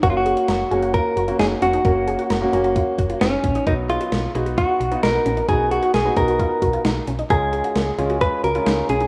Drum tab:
HH |x-xxx-xxx-xxx-xx|x-xxx-xxx-xxx-xx|x-xxx-xxx-xxx-xx|x-xxx-xxx-xxx-xx|
SD |----o-------o---|----o-------o---|----o-------o---|----o-------o---|
BD |o-------o-------|o-------o-o---o-|o-------o-------|o-----o-o-o-----|

HH |x-xxx-xxx-xxx-xx|
SD |----o-------o---|
BD |o-------o-------|